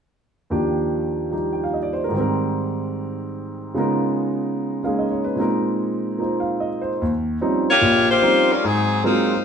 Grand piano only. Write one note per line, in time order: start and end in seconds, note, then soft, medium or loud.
0.50 2.13 D#2 soft
0.50 2.10 D#3 soft
0.50 1.29 F3 soft
0.50 2.14 D4 soft
0.50 1.32 G4 medium
1.31 2.13 F3 soft
1.31 2.13 G3 soft
1.31 2.14 D#4 soft
1.31 2.14 G4 soft
1.53 1.65 G5 soft
1.64 1.77 F5 soft
1.74 1.92 D#5 soft
1.83 2.00 D5 soft
1.93 2.06 C5 soft
2.04 2.18 A#4 soft
2.09 3.74 G#2 medium
2.09 3.75 D#3 soft
2.14 3.76 G3 soft
2.14 3.78 C4 soft
2.20 3.78 A#4 medium
3.74 5.38 C#3 soft
3.74 4.82 G#3 soft
3.74 5.39 B3 soft
3.74 4.84 D#4 soft
3.74 5.40 F4 soft
3.79 5.40 A#4 soft
4.83 5.36 G#3 soft
4.83 5.38 A#3 soft
4.83 5.39 C#4 soft
4.83 5.38 D#4 soft
4.83 5.40 G#4 soft
4.83 5.05 F5 soft
4.99 5.24 D#5 soft
5.11 5.32 C#5 soft
5.24 5.46 B4 soft
5.36 6.99 A#2 soft
5.36 7.00 G#3 soft
5.36 7.01 C4 soft
5.36 6.18 D#4 soft
5.41 7.02 A#4 soft
6.18 7.00 A#3 soft
6.18 7.01 D#4 soft
6.18 7.01 F4 soft
6.18 6.80 C5 soft
6.40 6.68 F5 soft
6.60 6.92 D#5 soft
6.81 7.09 C5 soft
7.02 7.36 D#2 medium
7.41 7.70 F3 medium
7.41 7.70 G3 soft
7.41 7.70 C4 soft
7.41 7.70 C#4 soft
7.41 7.70 D#4 medium
7.81 8.17 A#1 medium
7.81 8.17 A#2 medium
8.22 8.51 F3 soft
8.22 8.51 G3 soft
8.22 8.51 C4 soft
8.22 8.51 C#4 soft
8.22 8.51 D#4 medium
8.64 8.99 G#2 medium
9.04 9.32 F#3 soft
9.04 9.32 G#3 soft
9.04 9.32 A#3 soft
9.04 9.32 C4 soft
9.04 9.32 F4 medium